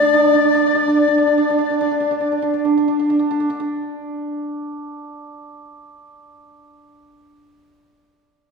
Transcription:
Already playing: guzheng D3 A3 D4, dizi D5, xiao D5
0.02 hammered dulcimer D4
0.14 hammered dulcimer D4
0.24 hammered dulcimer D4
0.35 hammered dulcimer D4
0.45 hammered dulcimer D4
0.55 hammered dulcimer D4
0.66 hammered dulcimer D4
0.75 hammered dulcimer D4
0.88 hammered dulcimer D4
0.98 hammered dulcimer D4
1.08 hammered dulcimer D4
1.18 hammered dulcimer D4
1.27 hammered dulcimer D4
1.38 hammered dulcimer D4
1.50 hammered dulcimer D4
1.59 hammered dulcimer D4
1.70 hammered dulcimer D4
1.81 hammered dulcimer D4
1.91 hammered dulcimer D4
2.00 hammered dulcimer D4
2.11 hammered dulcimer D4
2.20 hammered dulcimer D4
2.32 hammered dulcimer D4
2.42 hammered dulcimer D4
2.54 hammered dulcimer D4
2.65 hammered dulcimer D4
2.77 hammered dulcimer D4
2.88 hammered dulcimer D4
3.00 hammered dulcimer D4
3.10 hammered dulcimer D4
3.19 hammered dulcimer D4
3.31 hammered dulcimer D4
3.40 hammered dulcimer D4
3.50 hammered dulcimer D4
3.60 hammered dulcimer D4

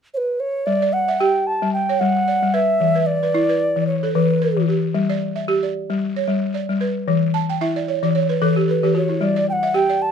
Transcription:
0.14 ocarina B4 C#5
0.40 ocarina C#5
0.66 balafon G3, ocarina D5
0.82 balafon D5
0.93 ocarina F#5
1.08 balafon E5
1.20 balafon G4, ocarina G5
1.47 ocarina A5
1.62 balafon G3
1.73 ocarina G5
1.89 balafon C#5
1.99 balafon G3, ocarina F#5
2.28 balafon D5
2.43 balafon G3
2.54 balafon B4, ocarina E5
2.81 balafon E3
2.95 balafon B4
3.06 ocarina D5
3.23 balafon B4
3.34 balafon E4
3.49 balafon B4
3.76 balafon E3
3.87 ocarina C#5
4.03 balafon A4
4.14 balafon E3, ocarina B4
4.42 balafon B4
4.57 balafon E3
4.68 balafon G4
4.94 balafon G3
5.10 balafon D5
5.36 balafon E5
5.48 balafon G4
5.63 balafon D5
5.90 balafon G3
6.16 balafon C#5
6.28 balafon G3
6.54 balafon D5
6.69 balafon G3
6.81 balafon B4
7.08 balafon E3
7.34 balafon A5
7.50 balafon G5
7.61 balafon E4 E5
7.76 balafon D5
7.88 balafon C#5
8.03 balafon E3 D5
8.15 balafon C#5
8.29 balafon B4
8.42 balafon E3 A4
8.56 balafon G4
8.68 balafon A4, ocarina B4
8.83 balafon E3 G4
8.95 balafon F#4, ocarina C#5
9.09 balafon E4
9.21 balafon G3, ocarina D5
9.36 balafon D5
9.49 ocarina F#5 G5
9.63 balafon E5
9.74 balafon G4, ocarina G5
9.90 balafon D5
10.02 ocarina A5

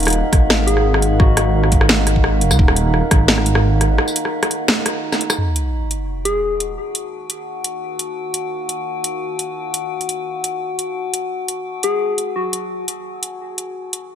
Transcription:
Already playing: detuned saw bass D#1, analog synth pad D#4 A#4 F5 F#5, synth drone D#4
0.00 closed hi-hat
0.03 closed hi-hat
0.05 cross-stick, closed hi-hat
0.08 closed hi-hat
0.10 closed hi-hat
0.13 closed hi-hat
0.32 detuned saw bass G#1, kick, cross-stick, closed hi-hat
0.50 cross-stick, snare
0.67 soft synth lead G#4, closed hi-hat
0.77 cross-stick
0.94 cross-stick
1.02 closed hi-hat
1.19 soft synth lead F#4, kick, cross-stick
1.37 cross-stick, closed hi-hat
1.64 cross-stick
1.72 detuned saw bass G#1, kick, closed hi-hat
1.81 cross-stick
1.89 snare
2.07 cross-stick, closed hi-hat
2.16 kick
2.24 cross-stick
2.41 detuned saw bass F1, closed hi-hat
2.51 detuned saw bass C#2, cross-stick, tambourine
2.59 detuned saw bass D#1, kick
2.68 cross-stick
2.76 closed hi-hat
2.94 cross-stick
3.11 detuned saw bass G#1, kick, cross-stick, closed hi-hat
3.28 snare
3.38 cross-stick
3.46 closed hi-hat
3.55 cross-stick
3.81 cross-stick, closed hi-hat
3.98 cross-stick
4.08 tambourine
4.16 closed hi-hat
4.25 cross-stick
4.43 cross-stick, closed hi-hat
4.51 closed hi-hat
4.68 cross-stick, snare
4.86 cross-stick, closed hi-hat
5.12 cross-stick, snare, tambourine
5.21 closed hi-hat
5.30 cross-stick, tambourine
5.38 analog synth pad D#4, synth drone F#4, sub drop
5.43 analog synth pad A#4
5.56 closed hi-hat
5.62 analog synth pad F#5
5.72 analog synth pad F5
5.91 closed hi-hat
6.25 soft synth lead G#4, closed hi-hat
6.60 closed hi-hat
6.95 closed hi-hat
7.30 closed hi-hat
7.64 closed hi-hat
7.99 closed hi-hat
8.34 closed hi-hat
8.69 closed hi-hat
9.04 closed hi-hat
9.39 closed hi-hat
9.74 closed hi-hat
10.01 closed hi-hat
10.09 closed hi-hat
10.44 closed hi-hat
10.79 closed hi-hat
11.14 closed hi-hat
11.48 closed hi-hat
11.83 soft synth lead G#4, closed hi-hat
12.11 analog synth pad G#5
12.18 closed hi-hat
12.36 soft synth lead F#4
12.53 closed hi-hat
12.88 closed hi-hat
13.23 closed hi-hat
13.58 closed hi-hat
13.93 closed hi-hat

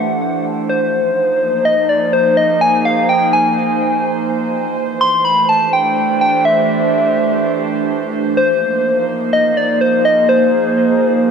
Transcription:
Already playing: ambient pad E3 A3 D4 G4 C5, soft synth lead F#5
0.69 ambient pad F3, soft synth lead C5
0.83 ambient pad D#4
1.15 ambient pad A#3
1.65 soft synth lead D#5
1.89 soft synth lead D5
2.13 soft synth lead C5
2.32 ambient pad G#4
2.37 soft synth lead D#5
2.61 soft synth lead G#5
2.85 soft synth lead F5
3.09 soft synth lead G5
3.33 soft synth lead G#5
4.53 ambient pad E3
4.99 ambient pad A3, soft synth lead C6
5.21 ambient pad G4
5.25 soft synth lead B5
5.45 ambient pad D4, soft synth lead A5
5.73 soft synth lead G5
6.21 soft synth lead G5
6.45 soft synth lead E5
8.37 ambient pad F3, soft synth lead C5
8.46 ambient pad A#3
8.50 ambient pad D#4
9.33 soft synth lead D#5
9.57 soft synth lead D5
9.75 ambient pad G#4
9.81 soft synth lead C5
10.05 soft synth lead D#5
10.29 soft synth lead C5

